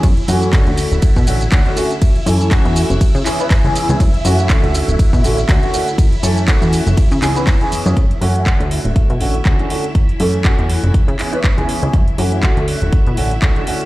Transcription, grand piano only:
X:1
M:4/4
L:1/16
Q:"Swing 16ths" 1/4=121
K:F#m
V:1 name="Grand piano"
z2 [E,A,CF]2 [D,A,CF]6 [D,A,CF] z [D,A,CF] [D,A,CF] [D,A,CF] z | z2 [E,A,CA]2 [E,A,CF]4 z2 [E,B,CG] [E,B,CB]2 [E,B,CG]2 [E,B,CG] | z2 [E,A,CF]2 [D,A,C]6 [D,A,CF] z [D,A,CF] [D,A,CF] [D,A,CF] z | z2 [E,A,CA]2 [E,A,CF]4 z2 [E,B,CG] [E,B,CB]2 [E,B,CG]2 [E,B,CG] |
z2 [E,A,CF]2 [D,A,CF]6 [D,A,CF] z [D,A,CF] [D,A,CF] [D,A,CF] z | z2 [E,A,CA]2 [E,A,CF]4 z2 [E,B,CG] [E,B,CB]2 [E,B,CG]2 [E,B,CG] | z2 [E,A,CF]2 [D,A,CF]6 [D,A,CF] z [D,A,CF] [D,A,CF] [D,A,CF] z |]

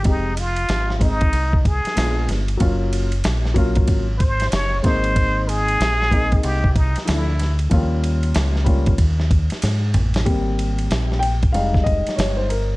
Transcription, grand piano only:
X:1
M:4/4
L:1/16
Q:"Swing 16ths" 1/4=94
K:Ab
V:1 name="Grand piano"
[A,CEG]2 z4 [A,CEA]2 z4 [A,_C=DF]2 z2 | [_G,B,DF]2 z4 [G,B,DF]2 z6 [A,B,CE]2- | [A,B,CE]4 z2 [A,B,CE]2 z4 [F,=A,=D=E]2 z2 | [F,G,B,DF]6 [G,B,DF]2 z8 |
G6 g2 f2 e2 d c B2 |]
V:2 name="Grand piano"
z16 | z16 | z16 | z16 |
[G,B,C]6 z2 [G,A,E]6 z2 |]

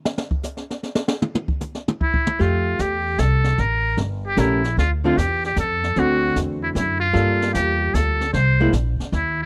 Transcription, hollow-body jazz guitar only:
X:1
M:3/4
L:1/8
Q:"Swing" 1/4=152
K:F
V:1 name="Hollow-body jazz guitar"
z6 | z6 | [A,G]4- [A,G] z | z4 [A,^CGB] z |
z [D,A,CF] z4 | [D,A,C^F]4- [D,A,CF] z | [G,B,FA]4- [G,B,FA] z | z [^G,B,E] z4 |]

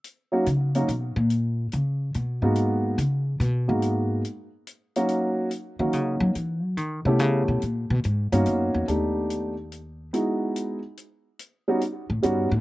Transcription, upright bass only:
X:1
M:3/4
L:1/8
Q:"Swing" 1/4=143
K:G#m
V:1 name="Upright bass" clef=bass
z2 C,2 B,, A,,- | A,,2 C,2 B,, G,,- | G,,2 C,2 B,, G,,- | G,,2 z4 |
z3 D, C, F, | E, F, D, ^B,, C, =B,, | A,, B,, G,, =G,, z E,, | D,,6 |
z6 | z3 =A,, =G,, A,, |]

